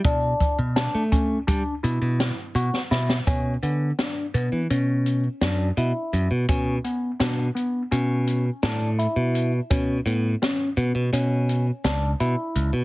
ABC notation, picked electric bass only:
X:1
M:9/8
L:1/16
Q:3/8=56
K:Bm
V:1 name="Picked electric bass" clef=bass
B,,2 z B,,2 A,3 G, z B,, B,,2 z B,, z B,,2 | B,,2 D,2 z2 B,, E, B,,4 F,,2 B,, z F,, B,, | B,,2 z2 B,,2 z2 B,,4 A,,3 B,,3 | B,,2 A,,2 z2 B,, B,, B,,4 C,,2 B,, z C,, B,, |]